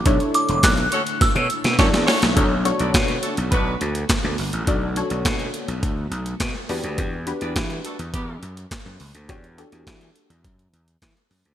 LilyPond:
<<
  \new Staff \with { instrumentName = "Synth bell" } { \time 4/4 \key b \minor \tempo 4 = 104 r8 d'''8 fis'''4 e'''4. r8 | r1 | r1 | r1 |
r1 | }
  \new Staff \with { instrumentName = "Analog polysynth" } { \time 4/4 \key b \minor <d' e' a' cis''>4~ <d' e' a' cis''>16 r4. r16 <d' e' a' d''>8 r8 | <d' fis' a' cis''>8 <d' fis' a' cis''>4~ <d' fis' a' cis''>16 r2 r16 | <d' fis' a' d''>8 <d' fis' a' cis''>4~ <d' fis' a' cis''>16 r4. r16 <d' fis' g' b'>8~ | <d' fis' g' b'>8 <d' fis' g' b'>4~ <d' fis' g' b'>16 r2 r16 |
<d' fis' g' cis''>8 <d' fis' g' a'>4~ <d' fis' g' a'>16 r2 r16 | }
  \new Staff \with { instrumentName = "Horn section" } { \time 4/4 \key b \minor r4. <cis' fis' a' cis''>16 r8 <cis' fis' a' cis''>16 r8 <cis' fis' a' cis''>16 r16 <cis' fis' a' cis''>8 | r8. <d' a' b' d''>16 r8 <a d' fis' a'>16 r16 <b d' fis' b'>8 r4. | r1 | r8. <d' g' b' d''>16 r8 <a d' fis' a'>16 r16 <b g' b'>8 r4. |
r1 | }
  \new Staff \with { instrumentName = "String machine" } { \time 4/4 \key b \minor << { <a d' e'>1 | <a b fis'>1~ | <a b fis'>2.~ <a b fis'>8 <g e' fis'>8 | r1 |
r1 | } \\ { d1 | d1~ | d1 | r1 |
r1 | } >> }
  \new Staff \with { instrumentName = "Slap bass" } { \clef bass \time 4/4 \key b \minor b,,16 r8 e,,16 b,,8 r8. b,16 r16 b,16 fis,16 e,16 r16 b,,16 | b,,8. b,,16 b,8 r16 b,,16 b,,8 d,8 r16 d,16 g,,16 a,,16 | b,,8. b,,16 b,8 r16 b,,16 d,8 b,,8 b,16 r16 e,16 d,16 | e,8. e,16 e8 r16 e,16 e,8 fis,8 r16 fis,16 cis,16 d,16 |
e,8. e,16 e8 r16 e,16 fis,8 e,8 e16 r16 fis,16 d,16 | }
  \new DrumStaff \with { instrumentName = "Drums" } \drummode { \time 4/4 <hh bd>16 hh16 hh16 hh16 <hc hh bd sn>16 hh16 hh16 hh16 <hh bd sn>16 hh16 hh16 <hh sn>16 <hh bd sn>16 <hh sn>16 <hho sn>16 <hh sn>16 | <hh bd>8 hh16 hh16 <hc hh bd sn>16 hh16 hh16 hh16 <hh bd>8 hh16 hh16 <hc hh bd sn>8 hho16 hh16 | <hh bd>8 hh16 hh16 <hc hh bd sn>16 hh16 hh16 hh16 <hh bd>8 hh16 hh16 <hc hh bd sn>8 hho16 hh16 | <hh bd>8 hh16 hh16 <hc hh bd sn>16 hh16 hh16 hh16 <hh bd>8 hh16 hh16 <hc hh bd sn>8 hho16 hh16 |
<hh bd>16 hh16 hh16 hh16 <hc hh bd sn>16 hh16 hh16 hh16 <hh bd>16 hh16 hh16 hh16 <hc hh bd sn>16 hh16 hho16 hh16 | }
>>